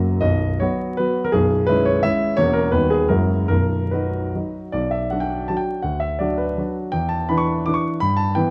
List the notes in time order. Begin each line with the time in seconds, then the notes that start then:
Already playing: F#1 F#2 F#3 A#3 F#4
0.21 B0 B1 D#5
0.60 F#3 B3 F#4 C#5
0.97 F#3 B3 F#4 B4
1.25 A#4
1.32 B0 B1 G#4
1.67 G#3 C#4 E4 B4
1.85 C#5
2.03 G#3 C#4 E4 E5
2.37 E1 E2 A#3 C#4 F#4 C#5
2.53 A#4
2.72 D#1 D#2 B3 D#4 F#4 B4
2.90 G#4
3.09 F#1 F#2 G#3 E4 F#4 A#4
3.48 B0 B1 A#4
3.91 F#3 D#4 F#4 B4
4.35 F#3 D#4 F#4
4.72 B1 D5
4.91 E5
5.11 F#3 D4 F#4 F#5
5.20 G5
5.48 F#3 D4 F#4 A5
5.57 G5
5.82 D2 F#5
6.00 E5
6.19 F#3 D4 F#4 D5
6.38 B4
6.57 F#3 D4 F#4
6.92 E2 G5
7.09 A5
7.29 E3 D4 B4 B5
7.37 C#6
7.66 E3 D4 B4 D6
7.74 C#6
8.00 G2 B5
8.17 A5
8.35 E3 B3 B4 G5